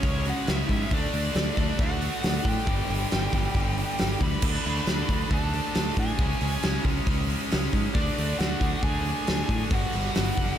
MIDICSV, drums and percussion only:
0, 0, Header, 1, 2, 480
1, 0, Start_track
1, 0, Tempo, 439883
1, 1005, Time_signature, 4, 2, 24, 8
1, 11546, End_track
2, 0, Start_track
2, 0, Title_t, "Drums"
2, 29, Note_on_c, 9, 46, 76
2, 35, Note_on_c, 9, 36, 111
2, 139, Note_off_c, 9, 46, 0
2, 144, Note_off_c, 9, 36, 0
2, 274, Note_on_c, 9, 46, 59
2, 383, Note_off_c, 9, 46, 0
2, 514, Note_on_c, 9, 46, 85
2, 526, Note_on_c, 9, 38, 127
2, 623, Note_off_c, 9, 46, 0
2, 635, Note_off_c, 9, 38, 0
2, 755, Note_on_c, 9, 36, 83
2, 755, Note_on_c, 9, 46, 58
2, 864, Note_off_c, 9, 36, 0
2, 864, Note_off_c, 9, 46, 0
2, 992, Note_on_c, 9, 46, 91
2, 996, Note_on_c, 9, 36, 116
2, 1101, Note_off_c, 9, 46, 0
2, 1105, Note_off_c, 9, 36, 0
2, 1237, Note_on_c, 9, 46, 67
2, 1346, Note_off_c, 9, 46, 0
2, 1471, Note_on_c, 9, 46, 91
2, 1483, Note_on_c, 9, 38, 122
2, 1580, Note_off_c, 9, 46, 0
2, 1592, Note_off_c, 9, 38, 0
2, 1716, Note_on_c, 9, 36, 83
2, 1720, Note_on_c, 9, 46, 71
2, 1825, Note_off_c, 9, 36, 0
2, 1829, Note_off_c, 9, 46, 0
2, 1952, Note_on_c, 9, 46, 79
2, 1953, Note_on_c, 9, 36, 106
2, 2061, Note_off_c, 9, 46, 0
2, 2062, Note_off_c, 9, 36, 0
2, 2196, Note_on_c, 9, 46, 60
2, 2305, Note_off_c, 9, 46, 0
2, 2435, Note_on_c, 9, 46, 105
2, 2447, Note_on_c, 9, 38, 121
2, 2544, Note_off_c, 9, 46, 0
2, 2556, Note_off_c, 9, 38, 0
2, 2673, Note_on_c, 9, 36, 86
2, 2676, Note_on_c, 9, 46, 71
2, 2782, Note_off_c, 9, 36, 0
2, 2785, Note_off_c, 9, 46, 0
2, 2915, Note_on_c, 9, 36, 117
2, 2918, Note_on_c, 9, 46, 102
2, 3024, Note_off_c, 9, 36, 0
2, 3027, Note_off_c, 9, 46, 0
2, 3163, Note_on_c, 9, 46, 70
2, 3272, Note_off_c, 9, 46, 0
2, 3395, Note_on_c, 9, 46, 97
2, 3407, Note_on_c, 9, 38, 116
2, 3504, Note_off_c, 9, 46, 0
2, 3516, Note_off_c, 9, 38, 0
2, 3632, Note_on_c, 9, 46, 66
2, 3633, Note_on_c, 9, 36, 87
2, 3742, Note_off_c, 9, 36, 0
2, 3742, Note_off_c, 9, 46, 0
2, 3868, Note_on_c, 9, 46, 79
2, 3872, Note_on_c, 9, 36, 99
2, 3977, Note_off_c, 9, 46, 0
2, 3981, Note_off_c, 9, 36, 0
2, 4118, Note_on_c, 9, 46, 54
2, 4227, Note_off_c, 9, 46, 0
2, 4348, Note_on_c, 9, 46, 97
2, 4360, Note_on_c, 9, 38, 127
2, 4457, Note_off_c, 9, 46, 0
2, 4469, Note_off_c, 9, 38, 0
2, 4591, Note_on_c, 9, 36, 84
2, 4592, Note_on_c, 9, 46, 58
2, 4700, Note_off_c, 9, 36, 0
2, 4701, Note_off_c, 9, 46, 0
2, 4824, Note_on_c, 9, 49, 122
2, 4829, Note_on_c, 9, 36, 118
2, 4933, Note_off_c, 9, 49, 0
2, 4938, Note_off_c, 9, 36, 0
2, 5060, Note_on_c, 9, 46, 71
2, 5169, Note_off_c, 9, 46, 0
2, 5307, Note_on_c, 9, 46, 93
2, 5319, Note_on_c, 9, 38, 115
2, 5416, Note_off_c, 9, 46, 0
2, 5428, Note_off_c, 9, 38, 0
2, 5553, Note_on_c, 9, 36, 88
2, 5553, Note_on_c, 9, 46, 60
2, 5662, Note_off_c, 9, 36, 0
2, 5663, Note_off_c, 9, 46, 0
2, 5789, Note_on_c, 9, 46, 77
2, 5792, Note_on_c, 9, 36, 109
2, 5898, Note_off_c, 9, 46, 0
2, 5901, Note_off_c, 9, 36, 0
2, 6035, Note_on_c, 9, 46, 55
2, 6144, Note_off_c, 9, 46, 0
2, 6269, Note_on_c, 9, 46, 100
2, 6281, Note_on_c, 9, 38, 127
2, 6378, Note_off_c, 9, 46, 0
2, 6390, Note_off_c, 9, 38, 0
2, 6513, Note_on_c, 9, 36, 96
2, 6514, Note_on_c, 9, 46, 62
2, 6622, Note_off_c, 9, 36, 0
2, 6623, Note_off_c, 9, 46, 0
2, 6748, Note_on_c, 9, 46, 91
2, 6752, Note_on_c, 9, 36, 126
2, 6857, Note_off_c, 9, 46, 0
2, 6862, Note_off_c, 9, 36, 0
2, 6989, Note_on_c, 9, 46, 74
2, 7098, Note_off_c, 9, 46, 0
2, 7230, Note_on_c, 9, 46, 91
2, 7242, Note_on_c, 9, 38, 118
2, 7339, Note_off_c, 9, 46, 0
2, 7351, Note_off_c, 9, 38, 0
2, 7472, Note_on_c, 9, 36, 87
2, 7473, Note_on_c, 9, 46, 75
2, 7581, Note_off_c, 9, 36, 0
2, 7582, Note_off_c, 9, 46, 0
2, 7714, Note_on_c, 9, 36, 107
2, 7714, Note_on_c, 9, 46, 87
2, 7823, Note_off_c, 9, 36, 0
2, 7823, Note_off_c, 9, 46, 0
2, 7960, Note_on_c, 9, 46, 65
2, 8069, Note_off_c, 9, 46, 0
2, 8199, Note_on_c, 9, 46, 98
2, 8211, Note_on_c, 9, 38, 127
2, 8308, Note_off_c, 9, 46, 0
2, 8320, Note_off_c, 9, 38, 0
2, 8436, Note_on_c, 9, 36, 85
2, 8444, Note_on_c, 9, 46, 65
2, 8545, Note_off_c, 9, 36, 0
2, 8553, Note_off_c, 9, 46, 0
2, 8674, Note_on_c, 9, 36, 117
2, 8676, Note_on_c, 9, 46, 86
2, 8783, Note_off_c, 9, 36, 0
2, 8785, Note_off_c, 9, 46, 0
2, 8926, Note_on_c, 9, 46, 66
2, 9035, Note_off_c, 9, 46, 0
2, 9161, Note_on_c, 9, 46, 84
2, 9173, Note_on_c, 9, 38, 112
2, 9270, Note_off_c, 9, 46, 0
2, 9282, Note_off_c, 9, 38, 0
2, 9394, Note_on_c, 9, 36, 87
2, 9399, Note_on_c, 9, 46, 67
2, 9504, Note_off_c, 9, 36, 0
2, 9508, Note_off_c, 9, 46, 0
2, 9633, Note_on_c, 9, 36, 97
2, 9633, Note_on_c, 9, 46, 82
2, 9742, Note_off_c, 9, 36, 0
2, 9742, Note_off_c, 9, 46, 0
2, 9875, Note_on_c, 9, 46, 55
2, 9984, Note_off_c, 9, 46, 0
2, 10115, Note_on_c, 9, 46, 93
2, 10127, Note_on_c, 9, 38, 125
2, 10224, Note_off_c, 9, 46, 0
2, 10236, Note_off_c, 9, 38, 0
2, 10354, Note_on_c, 9, 36, 83
2, 10356, Note_on_c, 9, 46, 69
2, 10464, Note_off_c, 9, 36, 0
2, 10465, Note_off_c, 9, 46, 0
2, 10587, Note_on_c, 9, 46, 95
2, 10594, Note_on_c, 9, 36, 127
2, 10696, Note_off_c, 9, 46, 0
2, 10703, Note_off_c, 9, 36, 0
2, 10832, Note_on_c, 9, 46, 77
2, 10941, Note_off_c, 9, 46, 0
2, 11073, Note_on_c, 9, 46, 102
2, 11085, Note_on_c, 9, 38, 115
2, 11182, Note_off_c, 9, 46, 0
2, 11194, Note_off_c, 9, 38, 0
2, 11318, Note_on_c, 9, 46, 74
2, 11321, Note_on_c, 9, 36, 86
2, 11427, Note_off_c, 9, 46, 0
2, 11430, Note_off_c, 9, 36, 0
2, 11546, End_track
0, 0, End_of_file